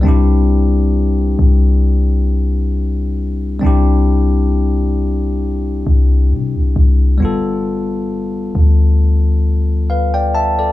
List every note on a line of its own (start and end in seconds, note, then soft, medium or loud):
0.01 1.35 C2 loud
0.01 3.57 G3 medium
0.01 3.58 C4 medium
0.01 3.59 D4 medium
0.07 3.60 E4 medium
0.07 3.61 G4 medium
1.39 3.59 C2 loud
3.59 5.83 C2 loud
3.59 7.15 G3 medium
3.59 7.16 C4 medium
3.59 7.17 D4 medium
3.65 7.18 E4 medium
3.65 7.19 G4 medium
5.87 6.33 C2 loud
6.31 6.57 C3 medium
6.55 6.75 C2 loud
6.76 7.19 C2 loud
7.18 8.51 G1 loud
7.18 10.72 G3 medium
7.18 10.72 B3 medium
7.22 10.72 F4 medium
7.22 9.87 A4 medium
8.55 10.72 D2 loud
9.90 10.13 B4 medium
9.90 10.13 F5 medium
10.14 10.34 D5 medium
10.14 10.33 G5 medium
10.35 10.58 E5 medium
10.35 10.57 A5 medium
10.59 10.72 A4 medium
10.59 10.72 D5 medium